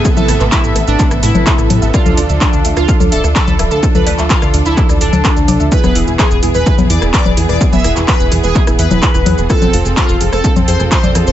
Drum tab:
HH |--o---o---o---o-|--o---o---o---o-|--o---o---o---o-|--o---o---o---o-|
SH |xxxxxxxxxxxxxxxx|xxxxxxxxxxxxxxxx|xxxxxxxxxxxxxxxx|xxxxxxxxxxxxxxxx|
CP |---xx---x---x---|----x-------x---|---xx---x---x---|----x-------x---|
SD |--r---r--r---r--|r---r--r---r--r-|--r--r---r--r---|-r--r---r--r---r|
CG |-O---------O--O-|-O-------O---O--|-O---------O--O-|-O-------O---O--|
BD |o---o---o---o---|o---o---o---o---|o---o---o---o---|o---o---o---o---|

HH |--o---o---o---o-|--o---o---o---o-|
SH |xxxxxxxxxxxxxxxx|xxxxxxxxxxxxxxxx|
CP |---xx---x---x---|----x-------x---|
SD |--r---r--r---r--|r---r--r---r--r-|
CG |-O---------O--O-|-O-------O---O--|
BD |o---o---o---o---|o---o---o---o---|